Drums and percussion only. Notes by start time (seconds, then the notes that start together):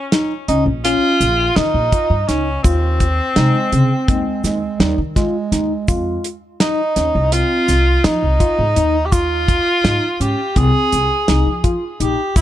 0.12 snare, closed hi-hat
0.48 closed hi-hat
0.85 closed hi-hat
1.21 closed hi-hat, shaker
1.56 snare, closed hi-hat
1.92 kick, closed hi-hat
2.29 snare, closed hi-hat
2.64 kick, closed hi-hat, shaker
3.00 kick, closed hi-hat
3.36 snare, closed hi-hat
3.72 closed hi-hat
4.08 kick, closed hi-hat
4.44 snare, closed hi-hat, shaker
4.80 snare, closed hi-hat
5.16 kick, snare, closed hi-hat
5.52 snare, closed hi-hat
5.88 kick, closed hi-hat, shaker
6.24 closed hi-hat
6.60 snare, closed hi-hat
6.96 snare, closed hi-hat
7.32 closed hi-hat
7.68 snare, closed hi-hat, shaker
8.04 snare, closed hi-hat
8.40 kick, closed hi-hat
8.76 closed hi-hat
9.12 kick, closed hi-hat, shaker
9.48 kick, closed hi-hat, shaker
9.85 snare, closed hi-hat
10.21 closed hi-hat, shaker
10.56 kick, closed hi-hat, shaker
10.92 closed hi-hat, shaker
11.28 snare, closed hi-hat
11.64 kick, closed hi-hat
12.00 closed hi-hat
12.36 kick, closed hi-hat, shaker